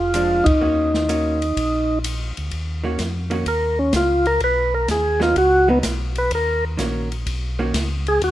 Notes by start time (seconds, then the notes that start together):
Already playing: F1 F4
0.14 F3 G#3 D4, hi-hat pedal, ride
0.44 F1 D#4, kick, ride
0.61 D#2 D#3 A#3 C#4 F#4
0.94 snare
1.09 D#3 A#3 C#4 F#4, hi-hat pedal, ride
1.42 ride
1.57 A#1, kick, ride
2.04 hi-hat pedal, ride
2.37 D2, ride
2.51 D#2, kick, ride
2.84 D#3 A#3 C#4 F#4
2.98 F2, kick, snare, hi-hat pedal, ride
3.30 D#3 A#3 C#4 F#4, ride
3.46 D#2 A#4, kick, ride
3.79 C#4
3.93 C#2 F4, kick, snare, hi-hat pedal, ride
4.25 A#4, ride
4.40 B1 B4, kick, ride
4.75 A#4
4.88 D#2 G#4, kick, snare, hi-hat pedal, ride
5.20 F#3 B3 D#4 F4, snare
5.36 C#2 F#4, kick, ride
5.68 F#3 B3 D#4
5.83 B1, kick, snare, hi-hat pedal, ride
6.15 B4, ride
6.31 D#2 A#4, kick, ride
6.77 A#1 D#3 A#3 C#4 F#4, kick, snare, hi-hat pedal, ride
7.12 ride
7.26 B1, kick, ride
7.59 D#3 A#3 C#4 F#4
7.73 C#2, kick, snare, hi-hat pedal, ride
8.07 G#4, ride
8.22 D#2 F#4, kick, ride